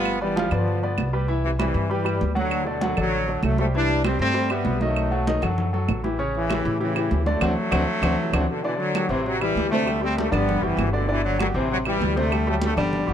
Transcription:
Already playing: upright bass G1, grand piano F3 F4 F5, trombone section G3 B3
0.05 high conga, claves
0.21 trombone section E3 G3, grand piano B3 B4 D5, high conga
0.36 grand piano F3 F4 F5, high conga
0.51 upright bass G2, trombone section D3 F3, grand piano B3 B4 D5, low conga, claves
0.68 high conga
0.83 grand piano B3 B4 D5, high conga
0.97 upright bass C2, high conga, claves
1.13 grand piano G3 G4 B4
1.28 grand piano E3 E4 E5, high conga
1.44 trombone section C3 E3, high conga
1.58 trombone section C3 E3, grand piano G3 G4 B4, high conga, claves
1.74 upright bass G2, high conga
1.90 trombone section E3 G3, grand piano G3 G4 B4, high conga
2.04 grand piano G3 G4 B4, high conga, claves
2.21 upright bass D2, high conga
2.35 trombone section D3 F#3, grand piano F#3 F#4 F#5, high conga
2.51 high conga, claves
2.66 trombone section B2 D3, grand piano A3 A4 D5, high conga
2.81 grand piano F#3 F#4 F#5, high conga
2.97 upright bass A1, trombone section D3 F#3, grand piano A3 A4 D5, low conga, claves
3.12 high conga
3.28 grand piano A3 A4 D5, high conga
3.43 upright bass C2, trombone section F#3 A3, high conga, claves
3.58 trombone section F#3 A3, grand piano G3 G4 C5, high conga
3.74 grand piano E3 E4 E5, trombone section G3 D4, high conga
3.89 high conga
4.04 grand piano G3 G4 C5, trombone section G3 C4, high conga, claves
4.19 upright bass G2, trombone section A3 C4, high conga
4.34 grand piano G3 G4 C5, high conga
4.50 grand piano G3 G4 E5, trombone section G3 B3, high conga, claves
4.65 upright bass B1, high conga
4.81 grand piano D#3 D#4 D#5, trombone section F#3 A3, high conga
4.96 high conga, claves
5.12 grand piano F#3 F#4 A4, high conga
5.27 grand piano D#3 D#4 D#5, high conga
5.42 upright bass F#2, grand piano F#3 F#4 A4, low conga, claves
5.58 high conga, low conga
5.73 grand piano F#3 F#4 A4, high conga
5.88 upright bass A1, high conga, claves
6.04 grand piano E3 E4 G4, high conga
6.19 grand piano C#3 C#4 C#5, high conga
6.35 trombone section C#3 E3, high conga
6.49 grand piano E3 E4 G4, high conga, claves
6.65 upright bass A2, high conga
6.80 trombone section C#3 E3, grand piano E3 E4 G4, high conga
6.95 grand piano E3 E4 G4, high conga, claves
7.11 upright bass D2, high conga
7.26 grand piano D3 D4 D5, trombone section F#3 A3, high conga
7.41 upright bass D2, grand piano C4 D4 F#4, low conga, claves
7.71 upright bass D2, grand piano C4 D4 F#4, low conga, claves
8.02 upright bass D2, grand piano C4 D4 F#4, low conga, claves
8.18 trombone section C3 E3
8.33 upright bass D2, grand piano C4 D4 F#4, low conga, claves
8.48 trombone section B2 D3
8.63 trombone section B2 E3, grand piano D3 D4 D5, high conga
8.78 trombone section D3 F#3, high conga
8.95 grand piano F#3 F#4 G4, high conga, claves
9.09 upright bass A1, grand piano C3 C4 C5, trombone section C3 E3, high conga
9.26 trombone section C3 F#3, high conga
9.40 grand piano E3 E4 G4, trombone section E3 G3, high conga, claves
9.55 upright bass D2, high conga
9.71 grand piano C3 C4 C5, trombone section D3 A3, high conga
9.86 grand piano G3 G4 A4, high conga, claves
10.01 grand piano G3 G4 A4, trombone section A3 C4, high conga
10.17 trombone section D3 A3, high conga
10.32 upright bass G1, grand piano D3 D4 D5, trombone section G3 B3, low conga, claves
10.49 high conga, low conga
10.62 upright bass F#1, trombone section C3 E3, grand piano G3 F#4 G4, high conga
10.77 upright bass G1, high conga, claves
10.92 trombone section B2 D3, grand piano D3 D4 D5
11.08 trombone section B2 E3, grand piano D3 D4 D5, high conga
11.25 trombone section D3 F#3, high conga
11.39 trombone section D3 F#3, grand piano F#3 F#4 G4, high conga, claves
11.54 upright bass A1, grand piano C3 C4 C5, trombone section C3 E3, high conga
11.71 trombone section C3 F#3, high conga
11.85 grand piano E3 E4 G4, trombone section E3 G3, high conga, claves
12.00 upright bass D2, high conga
12.16 grand piano C3 C4 C5, trombone section D3 A3, high conga
12.32 grand piano G3 G4 A4, high conga, claves
12.47 trombone section F#3 A3, grand piano G3 G4 A4, high conga
12.62 trombone section D3 A3, high conga
12.77 upright bass G1, grand piano D3 D4 D5, trombone section D3 G3, low conga, claves
12.93 high conga, low conga
13.07 upright bass F#1, trombone section C3 E3, grand piano G3 F#4 G4, high conga

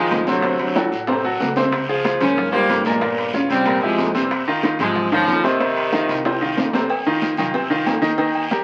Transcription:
Already playing: grand piano D#3 D#4 F4, trombone section F3 G#3
0.11 upright bass D2, high bongo, low bongo, high conga, high timbale, low timbale, short guiro
0.27 grand piano C3 C4 C5, trombone section D3 F#3, high bongo, high conga, short guiro
0.42 grand piano C3 C4 C5, high bongo, high conga, high timbale, long guiro
0.60 trombone section D3 F#3, high conga, high timbale
0.76 grand piano F#3 F#4 A4, high bongo, high conga, high timbale, short guiro
0.92 upright bass A1, high bongo, high conga, short guiro
1.07 grand piano C3 C4 C5, high bongo, high conga, low timbale, long guiro
1.24 grand piano F#3 F#4 A4, high bongo, high conga
1.40 upright bass C#2, high bongo, low bongo, high conga, low timbale, short guiro
1.56 grand piano C3 C4 C5, high bongo, high conga, low timbale, short guiro
1.72 high bongo, high timbale, long guiro
1.89 grand piano F3 F4 G#4, high conga
2.04 grand piano F3 F4 G#4, high bongo, high conga, high timbale, low timbale, short guiro
2.20 upright bass G#1, grand piano C#3 C#4 C5, trombone section A#3 C#4, high bongo, high conga, low conga, high timbale, short guiro
2.37 high bongo, high conga, low conga, long guiro
2.52 grand piano F3 F4 C5, trombone section G3 A#3, high bongo, high conga, high timbale
2.69 upright bass G1, high bongo, low bongo, high conga, high timbale, low timbale, short guiro
2.85 grand piano A#2 A#3 A#4, trombone section F3 G#3, high bongo, high conga, short guiro
3.01 grand piano A#2 A#3 A#4, high bongo, high timbale, long guiro
3.17 high conga, high timbale
3.33 grand piano C#3 C#4 F4, high bongo, high conga, low timbale, short guiro
3.50 upright bass C2, trombone section G3 C4, high bongo, high conga, high timbale, short guiro
3.65 grand piano A#2 A#3 A#4, high bongo, high timbale, long guiro
3.82 grand piano C3 E4 G4, trombone section F3 G#3, high bongo, high conga
3.98 upright bass F2, high bongo, low bongo, high conga, high timbale, low timbale, short guiro
4.14 grand piano C3 C4 C5, trombone section E3 G3, high bongo, high conga, short guiro
4.31 high bongo, high conga, high timbale, long guiro
4.47 grand piano D#3 D#4 F4, high conga
4.63 grand piano D#3 D#4 F4, high bongo, high conga, high timbale, low timbale, short guiro
4.79 upright bass G#2, grand piano C3 C4 C5, trombone section F3 G#3, high bongo, high conga, low conga, high timbale, short guiro
4.95 high bongo, high conga, low conga, long guiro
5.12 trombone section C#3 F3, grand piano D#3 D#4 F4, high bongo, high conga, high timbale
5.28 upright bass F2, high bongo, low bongo, high conga, high timbale, low timbale, short guiro
5.44 grand piano C3 C4 C5, trombone section C3 D#3, high bongo, high conga, short guiro
5.60 grand piano C3 C4 C5, high bongo, high conga, high timbale, long guiro
5.76 high conga, high timbale
5.93 grand piano D#3 D#4 F4, high bongo, high conga, low timbale, short guiro
6.09 upright bass C2, high conga, high timbale, short guiro
6.25 grand piano C3 C4 C5, high bongo, high conga, high timbale, long guiro
6.41 grand piano D#3 D#4 F4, high bongo, high conga
6.57 upright bass F2, high bongo, low bongo, high conga, low timbale, short guiro
6.73 grand piano C3 C4 C5, high bongo, high conga, low timbale, short guiro
6.89 cowbell, high conga, low agogo, long guiro
7.06 grand piano D#3 D#4 F4, high conga
7.21 cowbell, high conga, low timbale, low agogo, short guiro
7.37 upright bass C2, grand piano D#3 D#4 F4, cowbell, high conga, low conga, low agogo, short guiro
7.54 grand piano C3 C4 C5, cowbell, high conga, low agogo, long guiro
7.70 grand piano D#3 D#4 F4, high conga
7.86 upright bass D#2, cowbell, high conga, low timbale, low agogo, short guiro
8.02 grand piano D#3 D#4 D#5, high conga, short guiro
8.18 grand piano D#3 D#4 D#5, cowbell, high conga, low agogo, long guiro
8.35 high conga, low agogo
8.50 grand piano G3 G4 A#4, cowbell, high conga, low timbale, short guiro

